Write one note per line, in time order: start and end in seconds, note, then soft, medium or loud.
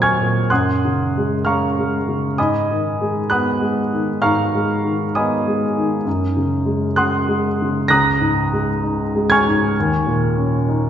0.00 0.47 D#2 soft
0.00 0.21 A#2 soft
0.00 0.53 F#3 soft
0.00 0.53 C4 soft
0.00 0.53 D#5 medium
0.00 0.03 G#5 medium
0.00 0.47 G#5 medium
0.00 0.50 C6 medium
0.00 0.48 C#6 medium
0.00 0.51 D#6 medium
0.00 0.47 F6 medium
0.00 0.50 G#6 medium
0.21 0.51 A#2 soft
0.50 2.34 F#2 soft
0.50 1.42 F#5 medium
0.50 1.41 C6 soft
0.50 1.42 D#6 medium
0.50 1.45 F#6 medium
0.85 1.34 C#3 soft
1.18 1.66 G#3 soft
1.45 1.96 C#4 soft
1.45 2.34 F5 medium
1.45 2.34 A#5 medium
1.45 2.34 C#6 medium
1.45 2.37 F6 medium
1.78 2.26 G#3 soft
2.08 2.38 C#3 soft
2.38 4.18 G#2 soft
2.38 3.26 D#5 medium
2.38 3.26 G#5 medium
2.38 3.26 B5 medium
2.38 3.29 D#6 medium
2.71 3.18 D#3 soft
3.01 3.48 G#3 soft
3.30 3.79 B3 soft
3.30 4.17 F#5 medium
3.30 4.17 B5 medium
3.30 4.17 D#6 medium
3.30 4.20 F#6 medium
3.61 4.09 G#3 soft
3.93 4.40 D#3 soft
4.22 6.04 G#2 soft
4.22 5.11 F5 medium
4.22 5.11 A#5 medium
4.22 5.11 C#6 medium
4.22 5.15 F6 medium
4.55 5.03 G#3 soft
4.85 5.34 D#3 soft
5.15 5.65 B3 soft
5.15 6.03 D#5 soft
5.15 6.03 G#5 medium
5.15 6.03 B5 soft
5.15 6.07 D#6 medium
5.47 5.95 G#3 soft
5.78 6.07 D#3 soft
6.06 7.85 F#2 soft
6.37 6.86 C#3 soft
6.66 7.16 G#3 soft
6.96 7.47 C#4 soft
6.96 7.84 F#5 medium
6.96 7.84 C6 medium
6.96 7.84 D#6 medium
6.96 7.88 F#6 medium
7.29 7.77 G#3 soft
7.62 7.90 C#3 soft
7.88 9.72 C#2 medium
7.88 9.25 A#5 medium
7.88 9.25 D#6 medium
7.88 9.25 F#6 medium
7.88 9.28 A#6 medium
8.20 8.69 G#2 soft
8.53 9.02 G#3 soft
8.83 9.33 D#4 soft
9.15 9.64 G#3 soft
9.30 10.90 G#5 medium
9.30 10.90 C#6 medium
9.30 10.90 F6 medium
9.30 10.90 G#6 medium
9.48 9.77 G#2 soft
9.80 10.90 D#2 medium
10.07 10.55 A#2 soft
10.38 10.86 C#4 soft
10.69 10.90 D#4 soft